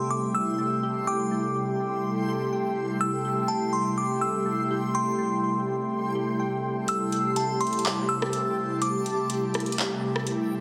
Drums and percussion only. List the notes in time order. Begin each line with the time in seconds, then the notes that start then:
6.88 closed hi-hat
7.12 closed hi-hat
7.36 closed hi-hat
7.61 closed hi-hat
7.67 closed hi-hat
7.73 closed hi-hat
7.79 closed hi-hat
7.85 clap, closed hi-hat
8.22 cross-stick
8.33 closed hi-hat
8.82 closed hi-hat
9.06 closed hi-hat
9.30 closed hi-hat
9.54 cross-stick, closed hi-hat
9.60 closed hi-hat
9.66 closed hi-hat
9.72 closed hi-hat
9.78 clap, closed hi-hat
10.16 cross-stick
10.27 closed hi-hat